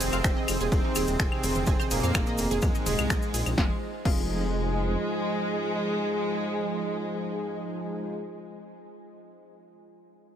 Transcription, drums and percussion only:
0.00 open hi-hat loud
0.00 ride medium
0.00 cabasa medium
0.13 closed hi-hat soft
0.13 cabasa soft
0.13 claves medium
0.24 finger snap loud
0.24 kick loud
0.24 closed hi-hat soft
0.24 ride medium
0.24 cabasa soft
0.48 open hi-hat medium
0.48 ride medium
0.48 cabasa medium
0.48 claves medium
0.61 closed hi-hat soft
0.61 cabasa soft
0.72 kick loud
0.72 closed hi-hat soft
0.72 ride medium
0.72 cabasa soft
0.95 open hi-hat loud
0.95 ride medium
0.95 cabasa loud
0.95 claves medium
1.07 closed hi-hat soft
1.07 cabasa soft
1.20 finger snap loud
1.20 kick loud
1.20 closed hi-hat soft
1.20 ride medium
1.20 cabasa medium
1.32 claves medium
1.44 open hi-hat medium
1.44 mid tom medium
1.44 ride medium
1.44 cabasa medium
1.55 closed hi-hat soft
1.55 mid tom medium
1.55 cabasa soft
1.66 kick loud
1.66 closed hi-hat soft
1.66 ride medium
1.66 cabasa medium
1.80 cabasa soft
1.80 claves medium
1.91 open hi-hat loud
1.91 ride medium
1.91 cabasa medium
2.04 closed hi-hat soft
2.04 cabasa soft
2.15 finger snap loud
2.15 kick loud
2.15 closed hi-hat soft
2.15 ride medium
2.15 cabasa medium
2.15 claves medium
2.26 cabasa soft
2.38 open hi-hat medium
2.38 ride medium
2.38 cabasa medium
2.51 closed hi-hat soft
2.51 mid tom medium
2.51 cabasa soft
2.62 kick loud
2.62 closed hi-hat soft
2.62 ride medium
2.62 cabasa medium
2.62 claves soft
2.75 cabasa soft
2.86 open hi-hat loud
2.86 mid tom medium
2.86 ride medium
2.86 cabasa medium
2.98 closed hi-hat soft
2.98 cabasa soft
2.98 claves medium
3.10 finger snap loud
3.10 kick loud
3.10 closed hi-hat soft
3.10 ride medium
3.10 cabasa medium
3.22 cabasa soft
3.34 open hi-hat medium
3.34 ride medium
3.34 cabasa medium
3.46 closed hi-hat soft
3.46 cabasa soft
3.46 claves medium
3.58 kick loud
3.58 snare medium
4.05 kick loud
4.05 crash medium

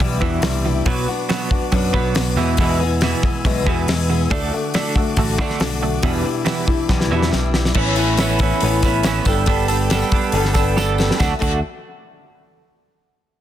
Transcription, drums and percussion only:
0.00 kick medium
0.00 open hi-hat soft
0.22 kick medium
0.42 snare loud
0.42 open hi-hat soft
0.86 kick loud
0.86 open hi-hat medium
1.29 snare loud
1.29 open hi-hat medium
1.51 kick medium
1.72 kick medium
1.72 open hi-hat medium
1.94 kick medium
2.15 snare loud
2.15 open hi-hat medium
2.57 kick loud
2.57 open hi-hat medium
3.01 snare medium
3.01 open hi-hat soft
3.23 kick medium
3.45 kick medium
3.45 open hi-hat soft
3.67 kick medium
3.88 snare loud
3.88 open hi-hat medium
4.31 kick loud
4.31 open hi-hat medium
4.74 snare loud
4.74 open hi-hat medium
4.96 kick medium
5.17 kick medium
5.17 open hi-hat medium
5.38 kick medium
5.50 snare soft
5.60 snare loud
5.60 open hi-hat medium
6.03 kick loud
6.03 open hi-hat medium
6.46 snare loud
6.46 open hi-hat medium
6.68 kick medium
6.89 kick medium
6.89 snare medium
7.01 snare medium
7.23 snare medium
7.33 snare medium
7.54 snare medium
7.65 snare medium
7.74 kick loud
7.74 crash loud
7.74 tambourine soft
7.86 tambourine soft
7.96 open hi-hat medium
7.96 tambourine medium
8.17 snare loud
8.17 open hi-hat medium
8.17 tambourine medium
8.30 tambourine medium
8.39 kick medium
8.39 open hi-hat medium
8.51 tambourine soft
8.61 open hi-hat medium
8.61 tambourine soft
8.83 kick medium
8.83 snare soft
8.83 open hi-hat medium
8.83 tambourine medium
9.03 snare loud
9.03 open hi-hat medium
9.03 tambourine loud
9.16 tambourine soft
9.25 kick medium
9.25 open hi-hat medium
9.25 tambourine medium
9.46 kick loud
9.46 open hi-hat medium
9.46 tambourine soft
9.60 tambourine soft
9.68 open hi-hat medium
9.68 tambourine medium
9.81 tambourine soft
9.90 snare loud
9.90 open hi-hat medium
9.90 tambourine loud
10.02 tambourine medium
10.12 kick medium
10.12 open hi-hat medium
10.23 tambourine soft
10.32 open hi-hat medium
10.32 tambourine soft
10.45 snare soft
10.54 kick medium
10.54 snare soft
10.54 open hi-hat medium
10.54 tambourine medium
10.77 snare medium
10.77 tambourine loud
10.98 snare medium
10.98 tambourine medium
11.11 snare medium
11.20 kick loud
11.20 snare medium
11.20 tambourine medium
11.42 kick loud
11.42 crash medium
11.42 tambourine medium

